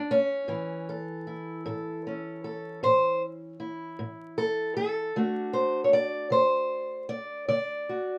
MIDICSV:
0, 0, Header, 1, 2, 480
1, 0, Start_track
1, 0, Key_signature, 2, "major"
1, 0, Tempo, 777202
1, 303, Time_signature, 12, 3, 24, 8
1, 5053, End_track
2, 0, Start_track
2, 0, Title_t, "Steel-string acoustic guitar"
2, 0, Program_c, 0, 25
2, 0, Note_on_c, 0, 62, 92
2, 66, Note_off_c, 0, 62, 0
2, 67, Note_on_c, 0, 61, 106
2, 296, Note_on_c, 0, 45, 85
2, 301, Note_on_c, 0, 52, 52
2, 544, Note_off_c, 0, 61, 0
2, 550, Note_on_c, 0, 69, 55
2, 731, Note_off_c, 0, 45, 0
2, 784, Note_on_c, 0, 64, 46
2, 1020, Note_off_c, 0, 69, 0
2, 1022, Note_on_c, 0, 45, 86
2, 1027, Note_on_c, 0, 69, 51
2, 1277, Note_on_c, 0, 61, 52
2, 1454, Note_off_c, 0, 45, 0
2, 1501, Note_off_c, 0, 69, 0
2, 1508, Note_on_c, 0, 69, 56
2, 1745, Note_off_c, 0, 69, 0
2, 1747, Note_on_c, 0, 45, 83
2, 1751, Note_on_c, 0, 72, 110
2, 1986, Note_off_c, 0, 72, 0
2, 2176, Note_off_c, 0, 45, 0
2, 2214, Note_off_c, 0, 64, 0
2, 2221, Note_on_c, 0, 64, 52
2, 2464, Note_on_c, 0, 45, 85
2, 2704, Note_on_c, 0, 69, 94
2, 2895, Note_off_c, 0, 45, 0
2, 2936, Note_off_c, 0, 69, 0
2, 2944, Note_on_c, 0, 69, 102
2, 3152, Note_off_c, 0, 64, 0
2, 3160, Note_off_c, 0, 61, 0
2, 3180, Note_off_c, 0, 52, 0
2, 3182, Note_off_c, 0, 69, 0
2, 3187, Note_on_c, 0, 50, 69
2, 3188, Note_on_c, 0, 57, 53
2, 3192, Note_on_c, 0, 62, 47
2, 3195, Note_on_c, 0, 66, 48
2, 3417, Note_on_c, 0, 72, 91
2, 3606, Note_off_c, 0, 72, 0
2, 3608, Note_on_c, 0, 73, 64
2, 3616, Note_off_c, 0, 50, 0
2, 3657, Note_off_c, 0, 73, 0
2, 3663, Note_on_c, 0, 74, 97
2, 3892, Note_on_c, 0, 50, 68
2, 3900, Note_off_c, 0, 74, 0
2, 3902, Note_on_c, 0, 72, 96
2, 4329, Note_off_c, 0, 50, 0
2, 4376, Note_off_c, 0, 72, 0
2, 4378, Note_on_c, 0, 74, 93
2, 4614, Note_off_c, 0, 74, 0
2, 4622, Note_on_c, 0, 74, 92
2, 4623, Note_on_c, 0, 50, 64
2, 4873, Note_off_c, 0, 66, 0
2, 4875, Note_on_c, 0, 66, 47
2, 5053, Note_off_c, 0, 50, 0
2, 5053, Note_off_c, 0, 57, 0
2, 5053, Note_off_c, 0, 62, 0
2, 5053, Note_off_c, 0, 66, 0
2, 5053, Note_off_c, 0, 74, 0
2, 5053, End_track
0, 0, End_of_file